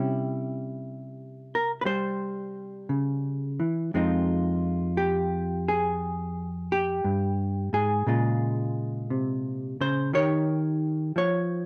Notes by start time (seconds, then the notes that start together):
Already playing: C3 G3 C#4 E4 G4
1.55 A#4
1.81 G3 B4
1.86 C5
2.89 C#3
3.60 E3
3.94 F2 G#3 C4 D#4 F4
4.97 G4
5.68 G#4
6.72 G4
7.04 G2
7.73 G#2 G#4
8.07 A#2 C#3 G#3 F4
9.10 C3
9.81 C#3 C5
10.14 D#3 D#4 G4 C#5
11.16 F3 C#5